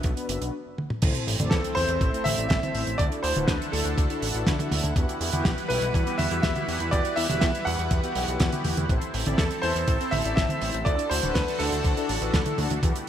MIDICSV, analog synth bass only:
0, 0, Header, 1, 2, 480
1, 0, Start_track
1, 0, Tempo, 491803
1, 1001, Time_signature, 4, 2, 24, 8
1, 12774, End_track
2, 0, Start_track
2, 0, Title_t, "Analog synth bass"
2, 0, Program_c, 0, 38
2, 41, Note_on_c, 0, 35, 102
2, 140, Note_off_c, 0, 35, 0
2, 282, Note_on_c, 0, 30, 92
2, 380, Note_off_c, 0, 30, 0
2, 402, Note_on_c, 0, 35, 83
2, 500, Note_off_c, 0, 35, 0
2, 1001, Note_on_c, 0, 33, 105
2, 1100, Note_off_c, 0, 33, 0
2, 1242, Note_on_c, 0, 33, 94
2, 1340, Note_off_c, 0, 33, 0
2, 1362, Note_on_c, 0, 33, 85
2, 1460, Note_off_c, 0, 33, 0
2, 1482, Note_on_c, 0, 40, 104
2, 1580, Note_off_c, 0, 40, 0
2, 1722, Note_on_c, 0, 40, 97
2, 1820, Note_off_c, 0, 40, 0
2, 1842, Note_on_c, 0, 40, 88
2, 1940, Note_off_c, 0, 40, 0
2, 1962, Note_on_c, 0, 33, 105
2, 2060, Note_off_c, 0, 33, 0
2, 2202, Note_on_c, 0, 33, 94
2, 2300, Note_off_c, 0, 33, 0
2, 2322, Note_on_c, 0, 33, 86
2, 2420, Note_off_c, 0, 33, 0
2, 2442, Note_on_c, 0, 33, 101
2, 2540, Note_off_c, 0, 33, 0
2, 2681, Note_on_c, 0, 33, 93
2, 2780, Note_off_c, 0, 33, 0
2, 2802, Note_on_c, 0, 33, 81
2, 2900, Note_off_c, 0, 33, 0
2, 2921, Note_on_c, 0, 38, 105
2, 3020, Note_off_c, 0, 38, 0
2, 3162, Note_on_c, 0, 38, 99
2, 3260, Note_off_c, 0, 38, 0
2, 3282, Note_on_c, 0, 26, 87
2, 3380, Note_off_c, 0, 26, 0
2, 3401, Note_on_c, 0, 38, 104
2, 3500, Note_off_c, 0, 38, 0
2, 3642, Note_on_c, 0, 38, 95
2, 3740, Note_off_c, 0, 38, 0
2, 3761, Note_on_c, 0, 38, 84
2, 3860, Note_off_c, 0, 38, 0
2, 3881, Note_on_c, 0, 38, 104
2, 3979, Note_off_c, 0, 38, 0
2, 4121, Note_on_c, 0, 33, 93
2, 4219, Note_off_c, 0, 33, 0
2, 4241, Note_on_c, 0, 33, 84
2, 4339, Note_off_c, 0, 33, 0
2, 4361, Note_on_c, 0, 38, 99
2, 4459, Note_off_c, 0, 38, 0
2, 4602, Note_on_c, 0, 38, 89
2, 4700, Note_off_c, 0, 38, 0
2, 4722, Note_on_c, 0, 38, 87
2, 4820, Note_off_c, 0, 38, 0
2, 4841, Note_on_c, 0, 40, 103
2, 4939, Note_off_c, 0, 40, 0
2, 5081, Note_on_c, 0, 40, 99
2, 5179, Note_off_c, 0, 40, 0
2, 5201, Note_on_c, 0, 40, 84
2, 5299, Note_off_c, 0, 40, 0
2, 5321, Note_on_c, 0, 35, 96
2, 5419, Note_off_c, 0, 35, 0
2, 5561, Note_on_c, 0, 35, 97
2, 5659, Note_off_c, 0, 35, 0
2, 5681, Note_on_c, 0, 35, 83
2, 5779, Note_off_c, 0, 35, 0
2, 5801, Note_on_c, 0, 40, 104
2, 5899, Note_off_c, 0, 40, 0
2, 6041, Note_on_c, 0, 40, 93
2, 6139, Note_off_c, 0, 40, 0
2, 6160, Note_on_c, 0, 40, 86
2, 6259, Note_off_c, 0, 40, 0
2, 6280, Note_on_c, 0, 40, 101
2, 6379, Note_off_c, 0, 40, 0
2, 6521, Note_on_c, 0, 40, 90
2, 6619, Note_off_c, 0, 40, 0
2, 6641, Note_on_c, 0, 40, 82
2, 6740, Note_off_c, 0, 40, 0
2, 6761, Note_on_c, 0, 40, 104
2, 6859, Note_off_c, 0, 40, 0
2, 7000, Note_on_c, 0, 40, 97
2, 7099, Note_off_c, 0, 40, 0
2, 7121, Note_on_c, 0, 28, 84
2, 7219, Note_off_c, 0, 28, 0
2, 7241, Note_on_c, 0, 40, 98
2, 7339, Note_off_c, 0, 40, 0
2, 7482, Note_on_c, 0, 40, 101
2, 7580, Note_off_c, 0, 40, 0
2, 7602, Note_on_c, 0, 40, 85
2, 7700, Note_off_c, 0, 40, 0
2, 7721, Note_on_c, 0, 40, 101
2, 7820, Note_off_c, 0, 40, 0
2, 7962, Note_on_c, 0, 35, 92
2, 8060, Note_off_c, 0, 35, 0
2, 8082, Note_on_c, 0, 35, 86
2, 8180, Note_off_c, 0, 35, 0
2, 8201, Note_on_c, 0, 40, 100
2, 8299, Note_off_c, 0, 40, 0
2, 8441, Note_on_c, 0, 40, 91
2, 8540, Note_off_c, 0, 40, 0
2, 8561, Note_on_c, 0, 40, 88
2, 8660, Note_off_c, 0, 40, 0
2, 8681, Note_on_c, 0, 33, 105
2, 8779, Note_off_c, 0, 33, 0
2, 8921, Note_on_c, 0, 33, 101
2, 9020, Note_off_c, 0, 33, 0
2, 9042, Note_on_c, 0, 33, 85
2, 9140, Note_off_c, 0, 33, 0
2, 9161, Note_on_c, 0, 40, 97
2, 9259, Note_off_c, 0, 40, 0
2, 9402, Note_on_c, 0, 40, 96
2, 9500, Note_off_c, 0, 40, 0
2, 9522, Note_on_c, 0, 40, 85
2, 9620, Note_off_c, 0, 40, 0
2, 9641, Note_on_c, 0, 33, 101
2, 9740, Note_off_c, 0, 33, 0
2, 9882, Note_on_c, 0, 33, 94
2, 9980, Note_off_c, 0, 33, 0
2, 10002, Note_on_c, 0, 33, 84
2, 10100, Note_off_c, 0, 33, 0
2, 10121, Note_on_c, 0, 33, 103
2, 10220, Note_off_c, 0, 33, 0
2, 10362, Note_on_c, 0, 33, 93
2, 10460, Note_off_c, 0, 33, 0
2, 10482, Note_on_c, 0, 33, 81
2, 10580, Note_off_c, 0, 33, 0
2, 10601, Note_on_c, 0, 38, 107
2, 10700, Note_off_c, 0, 38, 0
2, 10842, Note_on_c, 0, 38, 98
2, 10940, Note_off_c, 0, 38, 0
2, 10963, Note_on_c, 0, 26, 85
2, 11060, Note_off_c, 0, 26, 0
2, 11080, Note_on_c, 0, 38, 102
2, 11179, Note_off_c, 0, 38, 0
2, 11323, Note_on_c, 0, 38, 101
2, 11421, Note_off_c, 0, 38, 0
2, 11443, Note_on_c, 0, 38, 84
2, 11540, Note_off_c, 0, 38, 0
2, 11561, Note_on_c, 0, 38, 108
2, 11659, Note_off_c, 0, 38, 0
2, 11803, Note_on_c, 0, 33, 90
2, 11900, Note_off_c, 0, 33, 0
2, 11922, Note_on_c, 0, 33, 86
2, 12020, Note_off_c, 0, 33, 0
2, 12040, Note_on_c, 0, 38, 104
2, 12139, Note_off_c, 0, 38, 0
2, 12281, Note_on_c, 0, 38, 88
2, 12379, Note_off_c, 0, 38, 0
2, 12401, Note_on_c, 0, 38, 83
2, 12500, Note_off_c, 0, 38, 0
2, 12520, Note_on_c, 0, 40, 103
2, 12619, Note_off_c, 0, 40, 0
2, 12774, End_track
0, 0, End_of_file